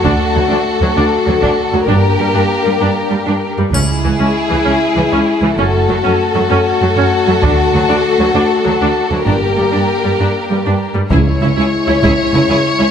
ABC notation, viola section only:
X:1
M:6/8
L:1/16
Q:3/8=65
K:C#phr
V:1 name="Viola section"
D z F, D z F, D z F, D z F, | D z =G, D z G, D z G, D z G, | C z E, C z E, C z E, C z E, | C z F, C z F, C z F, C z F, |
D z F, D z F, D z F, D z F, | D z =G, D z G, D z G, D z G, | E z E E z E E z E E z E |]